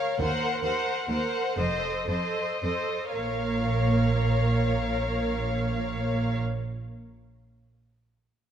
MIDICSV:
0, 0, Header, 1, 6, 480
1, 0, Start_track
1, 0, Key_signature, -5, "minor"
1, 0, Tempo, 875912
1, 111, Time_signature, 6, 3, 24, 8
1, 598, Tempo, 985222
1, 1078, Tempo, 1058201
1, 1558, Tempo, 961538
1, 2518, Tempo, 923077
1, 4314, End_track
2, 0, Start_track
2, 0, Title_t, "Violin section"
2, 0, Program_c, 0, 48
2, 0, Note_on_c, 0, 77, 34
2, 103, Note_off_c, 0, 77, 0
2, 109, Note_on_c, 0, 78, 39
2, 341, Note_off_c, 0, 78, 0
2, 350, Note_on_c, 0, 78, 33
2, 595, Note_off_c, 0, 78, 0
2, 608, Note_on_c, 0, 78, 28
2, 832, Note_off_c, 0, 78, 0
2, 842, Note_on_c, 0, 75, 36
2, 1078, Note_off_c, 0, 75, 0
2, 1087, Note_on_c, 0, 75, 31
2, 1324, Note_off_c, 0, 75, 0
2, 1333, Note_on_c, 0, 75, 26
2, 1558, Note_off_c, 0, 75, 0
2, 1561, Note_on_c, 0, 77, 29
2, 3206, Note_off_c, 0, 77, 0
2, 4314, End_track
3, 0, Start_track
3, 0, Title_t, "Violin section"
3, 0, Program_c, 1, 48
3, 0, Note_on_c, 1, 73, 34
3, 104, Note_off_c, 1, 73, 0
3, 112, Note_on_c, 1, 72, 40
3, 339, Note_off_c, 1, 72, 0
3, 345, Note_on_c, 1, 72, 35
3, 592, Note_off_c, 1, 72, 0
3, 600, Note_on_c, 1, 72, 32
3, 826, Note_off_c, 1, 72, 0
3, 832, Note_on_c, 1, 72, 37
3, 1073, Note_off_c, 1, 72, 0
3, 1084, Note_on_c, 1, 72, 30
3, 1323, Note_off_c, 1, 72, 0
3, 1328, Note_on_c, 1, 72, 25
3, 1555, Note_off_c, 1, 72, 0
3, 1564, Note_on_c, 1, 73, 28
3, 3210, Note_off_c, 1, 73, 0
3, 4314, End_track
4, 0, Start_track
4, 0, Title_t, "Viola section"
4, 0, Program_c, 2, 48
4, 0, Note_on_c, 2, 70, 28
4, 103, Note_off_c, 2, 70, 0
4, 110, Note_on_c, 2, 70, 38
4, 340, Note_off_c, 2, 70, 0
4, 347, Note_on_c, 2, 70, 30
4, 591, Note_off_c, 2, 70, 0
4, 598, Note_on_c, 2, 70, 30
4, 827, Note_off_c, 2, 70, 0
4, 829, Note_on_c, 2, 69, 33
4, 1067, Note_off_c, 2, 69, 0
4, 1073, Note_on_c, 2, 69, 35
4, 1317, Note_off_c, 2, 69, 0
4, 1326, Note_on_c, 2, 69, 24
4, 1554, Note_off_c, 2, 69, 0
4, 1558, Note_on_c, 2, 70, 29
4, 3202, Note_off_c, 2, 70, 0
4, 4314, End_track
5, 0, Start_track
5, 0, Title_t, "Cello section"
5, 0, Program_c, 3, 48
5, 106, Note_on_c, 3, 39, 45
5, 150, Note_off_c, 3, 39, 0
5, 347, Note_on_c, 3, 39, 37
5, 390, Note_off_c, 3, 39, 0
5, 597, Note_on_c, 3, 39, 30
5, 636, Note_off_c, 3, 39, 0
5, 829, Note_on_c, 3, 41, 34
5, 868, Note_off_c, 3, 41, 0
5, 1077, Note_on_c, 3, 41, 36
5, 1113, Note_off_c, 3, 41, 0
5, 1327, Note_on_c, 3, 41, 27
5, 1364, Note_off_c, 3, 41, 0
5, 1557, Note_on_c, 3, 46, 33
5, 3202, Note_off_c, 3, 46, 0
5, 4314, End_track
6, 0, Start_track
6, 0, Title_t, "Double bass section"
6, 0, Program_c, 4, 48
6, 110, Note_on_c, 4, 39, 46
6, 330, Note_off_c, 4, 39, 0
6, 828, Note_on_c, 4, 29, 32
6, 1059, Note_off_c, 4, 29, 0
6, 1558, Note_on_c, 4, 34, 33
6, 3203, Note_off_c, 4, 34, 0
6, 4314, End_track
0, 0, End_of_file